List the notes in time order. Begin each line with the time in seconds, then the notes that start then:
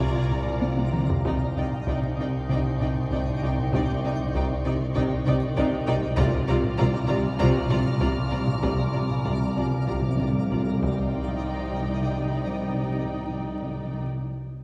Already playing: C2 C3 F4 D5 F5 A#5 D6 G#6
0.00 C3
0.30 C3, taiko low-mid
0.62 C3, taiko high
0.77 taiko high
0.94 C3, taiko mid
1.10 taiko low
1.24 C2 C3 D#4 D5 G5 C6 G6, taiko
1.56 C2 C3 D#4 D5 G5
1.72 taiko low-mid
1.86 C2 C3 D#4 D5 G5 C#6, taiko
2.17 C2 C3 D#4 D5 G5
2.49 C2 C3 D#4 D5 G5, taiko
2.80 C2 C3 D#4 D5 G5, taiko low-mid
3.11 C2 C3 D#4 D5 G5, taiko
3.42 C2 C3 D#4 D5 G5
3.57 taiko low-mid
3.72 C2 C3 D#4 D5 G5, taiko
4.04 C2 C3 D#4 D5 G5
4.20 taiko low-mid
4.34 C2 C3 D#4 D5 G5, taiko
4.64 C2 C3 D#4 D5 G5
4.94 C2 C3 D#4 D5 G5, taiko
5.25 C2 C3 D#4 D5 G5, taiko low-mid
5.56 C2 C3 D#4 D5 G5, taiko
5.86 C2 C3 D#4 D5 G5
6.02 taiko low-mid
6.16 C2 C3 F4 D5 F5 A#5 D6 F6, taiko
6.26 C3
6.39 C3
6.47 C2 C3 F4 D5 A#5
6.56 C3
6.63 C3, taiko low-mid
6.70 C3
6.77 C2 C3 F4 D5 A#5, taiko
6.99 C3
7.06 C2 C3 F4 D5 A#5
7.11 C3
7.21 C3
7.28 C3
7.35 C3 F4 D5 A#5
7.39 C2 C3, taiko
7.43 C3
7.50 C3
7.66 C2 C3 F4 D5 A#5, taiko low-mid
7.71 C3
7.81 C3
7.88 C3
7.96 C3
8.00 C2 C3 F4 D5 A#5, taiko
8.10 C3
8.18 C3
8.25 C3
8.30 C2 C3 F4 D5 A#5
8.40 C3
8.48 C3, taiko low-mid
8.55 C3
8.62 C2 C3 F4 D5 A#5, taiko
8.70 C3
8.78 C3
8.86 C3
8.92 C2 C3 F4 D5 A#5
9.00 C3
9.08 C3, taiko low-mid
9.17 C3
9.24 C2 C3 F4 D5 A#5, taiko
9.31 C3
9.38 C3
9.47 C3
9.54 C2 C3 F4 D5 A#5
9.62 C3
9.70 C3
9.78 C3
9.85 C2 C3 F4 D5 A#5, taiko
9.93 C3
10.00 C3
10.08 C3
10.15 C3 D5
10.19 C2 C3 F4 A#5, taiko low-mid
10.29 C3
10.38 C3
10.46 C3
10.51 C2 C3 F4 D5 A#5, taiko
10.61 C3
10.69 C3
10.77 C3
10.81 C2 C3 D#4 D5 G5 C6, taiko
10.92 C3
10.99 C3
11.07 C3
11.14 C3
11.21 C3
11.28 C3
11.35 C3
11.42 C3
11.50 C3
11.58 C3
11.66 C3
11.73 C3
11.80 C3
11.87 C3
11.94 C3
12.01 C3
12.09 C3
12.16 C3
12.21 C3 B5
12.32 C3
12.39 C3
12.46 C3
12.53 C3
12.61 C3
12.68 C3
12.76 C3
12.83 C3
12.90 C3
12.97 C3
13.04 C3
13.12 C3
13.19 C3
13.26 C3
13.33 C3
13.40 C3
13.47 C3
13.55 C3
13.62 C3
13.70 C3
13.77 C3
13.85 C3
13.92 C3
14.00 C3